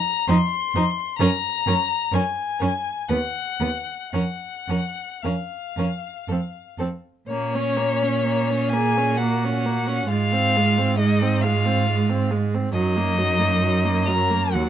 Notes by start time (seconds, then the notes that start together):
Already playing: A#5
0.27 F2 D#4 C5 C6
0.74 F2 D#4 C5
1.19 F#2 C#4 A#4 A#5
1.66 F#2 C#4 A#4
2.11 F#2 C#4 A#4 G#5
2.59 F#2 C#4 A#4
3.08 D#2 B3 B4 F#5
3.60 D#2 B3 B4
4.12 F2 C#4 A#4 F#5
4.68 F2 C#4 A#4
5.22 F2 C#4 A#4 F5
5.77 F2 C#4 A#4
6.28 F2 C4 A4
6.78 F2 C4 A4
7.27 A#2 A#3 C#4 C#5
7.54 C#4
7.77 A#3
8.03 C#4
8.26 A#3
8.50 C#4
8.69 A#3 G#4 G#5
8.97 C#4
9.17 A#3 F#4 F#5
9.44 C#4
9.66 A#3
9.88 C#4
10.07 G#2 G#3 F4 F5
10.33 C4
10.57 G#3
10.78 C4
10.97 G#3 D#4 D#5
11.22 C4
11.41 G#3 F4 F5
11.65 C4
11.90 G#3
12.09 C4
12.31 G#3
12.54 C4
12.72 F#2 F#3 D#4 D#5
12.96 A#3
13.18 F#3
13.39 A#3
13.62 F#3
13.84 A#3
14.06 F#3 A#4 A#5
14.30 A#3
14.52 D#2 F#3 F#4 F#5